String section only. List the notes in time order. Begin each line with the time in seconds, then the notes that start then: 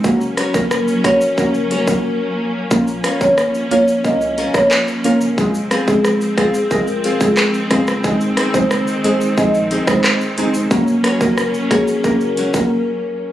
0.04 F#3 A#3 C#4
2.71 F3 C#4
5.38 G#3 C4
8.04 D#3
10.71 F#3 A#3 C#4